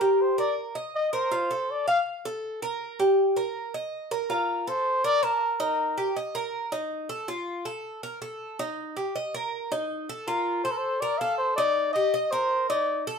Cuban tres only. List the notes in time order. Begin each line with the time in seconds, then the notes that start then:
0.01 G4
0.38 A#4
0.75 D#5
1.13 A#4
1.32 F4
1.51 A4
1.88 F5
2.25 A4
2.62 A#4
3.00 G4
3.37 A#4
3.74 D#5
4.11 A#4
4.30 F4
4.67 A4
5.04 A#4
5.23 A5
5.60 D#4
5.98 G4
6.17 D#5
6.35 A#4
6.72 D#4
7.09 A4
7.28 F4
7.65 A4
8.03 A#4
8.22 A4
8.59 D#4
8.97 G4
9.16 D#5
9.34 A#4
9.72 D#4
10.09 A4
10.28 F4
10.65 A4
11.02 A#4
11.21 A4
11.58 D#4
11.96 G4
12.14 D#5
12.32 A#4
12.70 D#4
13.07 A4